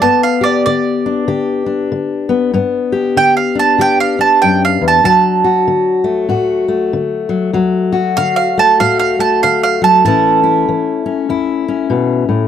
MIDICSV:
0, 0, Header, 1, 3, 480
1, 0, Start_track
1, 0, Key_signature, 2, "major"
1, 0, Tempo, 624350
1, 27, Time_signature, 4, 2, 24, 8
1, 9592, End_track
2, 0, Start_track
2, 0, Title_t, "Mandolin"
2, 0, Program_c, 0, 25
2, 13, Note_on_c, 0, 81, 90
2, 176, Note_off_c, 0, 81, 0
2, 179, Note_on_c, 0, 77, 84
2, 335, Note_on_c, 0, 74, 84
2, 339, Note_off_c, 0, 77, 0
2, 497, Note_off_c, 0, 74, 0
2, 505, Note_on_c, 0, 74, 83
2, 1442, Note_off_c, 0, 74, 0
2, 2440, Note_on_c, 0, 79, 97
2, 2585, Note_off_c, 0, 79, 0
2, 2588, Note_on_c, 0, 77, 75
2, 2748, Note_off_c, 0, 77, 0
2, 2763, Note_on_c, 0, 81, 84
2, 2916, Note_off_c, 0, 81, 0
2, 2930, Note_on_c, 0, 79, 111
2, 3075, Note_off_c, 0, 79, 0
2, 3078, Note_on_c, 0, 77, 84
2, 3232, Note_off_c, 0, 77, 0
2, 3235, Note_on_c, 0, 81, 80
2, 3392, Note_off_c, 0, 81, 0
2, 3396, Note_on_c, 0, 79, 86
2, 3553, Note_off_c, 0, 79, 0
2, 3573, Note_on_c, 0, 77, 90
2, 3722, Note_off_c, 0, 77, 0
2, 3750, Note_on_c, 0, 81, 81
2, 3874, Note_off_c, 0, 81, 0
2, 3883, Note_on_c, 0, 81, 99
2, 5292, Note_off_c, 0, 81, 0
2, 6279, Note_on_c, 0, 77, 102
2, 6420, Note_off_c, 0, 77, 0
2, 6429, Note_on_c, 0, 77, 77
2, 6589, Note_off_c, 0, 77, 0
2, 6606, Note_on_c, 0, 81, 88
2, 6758, Note_off_c, 0, 81, 0
2, 6766, Note_on_c, 0, 77, 105
2, 6906, Note_off_c, 0, 77, 0
2, 6915, Note_on_c, 0, 77, 88
2, 7072, Note_off_c, 0, 77, 0
2, 7076, Note_on_c, 0, 81, 91
2, 7232, Note_off_c, 0, 81, 0
2, 7249, Note_on_c, 0, 77, 89
2, 7398, Note_off_c, 0, 77, 0
2, 7407, Note_on_c, 0, 77, 87
2, 7558, Note_off_c, 0, 77, 0
2, 7565, Note_on_c, 0, 81, 93
2, 7716, Note_off_c, 0, 81, 0
2, 7730, Note_on_c, 0, 81, 78
2, 9129, Note_off_c, 0, 81, 0
2, 9592, End_track
3, 0, Start_track
3, 0, Title_t, "Steel-string acoustic guitar"
3, 0, Program_c, 1, 25
3, 11, Note_on_c, 1, 43, 78
3, 18, Note_on_c, 1, 59, 63
3, 316, Note_on_c, 1, 67, 60
3, 464, Note_off_c, 1, 43, 0
3, 512, Note_on_c, 1, 50, 61
3, 814, Note_on_c, 1, 62, 60
3, 955, Note_off_c, 1, 50, 0
3, 980, Note_off_c, 1, 67, 0
3, 982, Note_on_c, 1, 50, 65
3, 983, Note_on_c, 1, 67, 60
3, 1276, Note_off_c, 1, 62, 0
3, 1279, Note_on_c, 1, 62, 57
3, 1432, Note_off_c, 1, 50, 0
3, 1474, Note_on_c, 1, 50, 65
3, 1751, Note_off_c, 1, 59, 0
3, 1760, Note_on_c, 1, 59, 58
3, 1918, Note_off_c, 1, 50, 0
3, 1928, Note_off_c, 1, 67, 0
3, 1929, Note_off_c, 1, 59, 0
3, 1949, Note_on_c, 1, 43, 79
3, 1953, Note_on_c, 1, 59, 66
3, 2248, Note_on_c, 1, 67, 65
3, 2396, Note_off_c, 1, 43, 0
3, 2434, Note_on_c, 1, 50, 59
3, 2728, Note_off_c, 1, 62, 0
3, 2731, Note_on_c, 1, 62, 58
3, 2879, Note_off_c, 1, 50, 0
3, 2907, Note_off_c, 1, 67, 0
3, 2908, Note_on_c, 1, 50, 65
3, 2916, Note_on_c, 1, 67, 66
3, 3217, Note_off_c, 1, 62, 0
3, 3220, Note_on_c, 1, 62, 57
3, 3357, Note_off_c, 1, 50, 0
3, 3406, Note_on_c, 1, 42, 70
3, 3697, Note_off_c, 1, 42, 0
3, 3700, Note_on_c, 1, 40, 64
3, 3855, Note_off_c, 1, 59, 0
3, 3856, Note_off_c, 1, 67, 0
3, 3872, Note_off_c, 1, 40, 0
3, 3875, Note_on_c, 1, 38, 88
3, 3882, Note_on_c, 1, 54, 65
3, 4185, Note_on_c, 1, 66, 65
3, 4321, Note_off_c, 1, 38, 0
3, 4363, Note_on_c, 1, 50, 65
3, 4641, Note_off_c, 1, 62, 0
3, 4644, Note_on_c, 1, 57, 59
3, 4805, Note_off_c, 1, 50, 0
3, 4833, Note_on_c, 1, 45, 62
3, 4836, Note_off_c, 1, 66, 0
3, 4839, Note_on_c, 1, 66, 64
3, 5135, Note_off_c, 1, 57, 0
3, 5138, Note_on_c, 1, 57, 54
3, 5280, Note_off_c, 1, 45, 0
3, 5329, Note_on_c, 1, 50, 63
3, 5596, Note_off_c, 1, 54, 0
3, 5605, Note_on_c, 1, 54, 56
3, 5768, Note_off_c, 1, 50, 0
3, 5777, Note_off_c, 1, 66, 0
3, 5787, Note_off_c, 1, 54, 0
3, 5792, Note_on_c, 1, 38, 83
3, 5797, Note_on_c, 1, 54, 63
3, 6093, Note_on_c, 1, 66, 66
3, 6239, Note_off_c, 1, 38, 0
3, 6287, Note_on_c, 1, 50, 63
3, 6590, Note_off_c, 1, 57, 0
3, 6593, Note_on_c, 1, 57, 63
3, 6726, Note_off_c, 1, 50, 0
3, 6759, Note_off_c, 1, 66, 0
3, 6767, Note_on_c, 1, 45, 62
3, 6772, Note_on_c, 1, 66, 62
3, 7057, Note_off_c, 1, 57, 0
3, 7066, Note_on_c, 1, 57, 55
3, 7205, Note_off_c, 1, 45, 0
3, 7256, Note_on_c, 1, 50, 57
3, 7530, Note_off_c, 1, 54, 0
3, 7547, Note_on_c, 1, 54, 62
3, 7689, Note_off_c, 1, 50, 0
3, 7702, Note_off_c, 1, 66, 0
3, 7724, Note_off_c, 1, 57, 0
3, 7724, Note_on_c, 1, 45, 85
3, 7725, Note_off_c, 1, 54, 0
3, 7731, Note_on_c, 1, 52, 61
3, 7741, Note_on_c, 1, 57, 63
3, 7745, Note_on_c, 1, 61, 66
3, 7747, Note_on_c, 1, 64, 77
3, 8013, Note_off_c, 1, 64, 0
3, 8023, Note_on_c, 1, 64, 62
3, 8162, Note_off_c, 1, 45, 0
3, 8203, Note_off_c, 1, 52, 0
3, 8215, Note_on_c, 1, 52, 58
3, 8491, Note_off_c, 1, 61, 0
3, 8501, Note_on_c, 1, 61, 60
3, 8647, Note_off_c, 1, 52, 0
3, 8676, Note_off_c, 1, 64, 0
3, 8680, Note_on_c, 1, 40, 62
3, 8686, Note_on_c, 1, 64, 67
3, 8974, Note_off_c, 1, 61, 0
3, 8983, Note_on_c, 1, 61, 57
3, 9119, Note_off_c, 1, 40, 0
3, 9147, Note_on_c, 1, 47, 69
3, 9443, Note_off_c, 1, 47, 0
3, 9446, Note_on_c, 1, 45, 63
3, 9592, Note_off_c, 1, 45, 0
3, 9592, Note_off_c, 1, 57, 0
3, 9592, Note_off_c, 1, 61, 0
3, 9592, Note_off_c, 1, 64, 0
3, 9592, End_track
0, 0, End_of_file